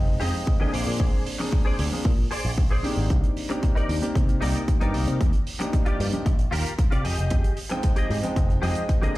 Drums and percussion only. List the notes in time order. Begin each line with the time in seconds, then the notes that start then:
0.20 open hi-hat
0.47 kick
0.74 open hi-hat
1.00 kick
1.26 open hi-hat
1.52 kick
1.79 open hi-hat
2.05 kick
2.31 open hi-hat
2.58 kick
2.84 open hi-hat
3.10 kick, closed hi-hat
3.24 closed hi-hat
3.37 open hi-hat
3.50 closed hi-hat
3.63 kick, closed hi-hat
3.77 closed hi-hat
3.89 open hi-hat
4.03 closed hi-hat
4.15 kick, closed hi-hat
4.29 closed hi-hat
4.42 open hi-hat
4.56 closed hi-hat
4.68 kick, closed hi-hat
4.81 closed hi-hat
4.94 open hi-hat
5.08 closed hi-hat
5.21 kick, closed hi-hat
5.33 closed hi-hat
5.47 open hi-hat
5.60 closed hi-hat
5.73 kick, closed hi-hat
5.86 closed hi-hat
6.00 open hi-hat
6.12 closed hi-hat
6.26 kick, closed hi-hat
6.39 closed hi-hat
6.52 open hi-hat
6.66 closed hi-hat
6.79 kick, closed hi-hat
6.92 closed hi-hat
7.05 open hi-hat
7.17 closed hi-hat
7.30 kick, closed hi-hat
7.44 closed hi-hat
7.57 open hi-hat
7.70 closed hi-hat
7.83 kick, closed hi-hat
7.96 closed hi-hat
8.11 open hi-hat
8.23 closed hi-hat
8.36 kick, closed hi-hat
8.50 closed hi-hat
8.63 open hi-hat
8.75 closed hi-hat
8.89 kick, closed hi-hat
9.03 closed hi-hat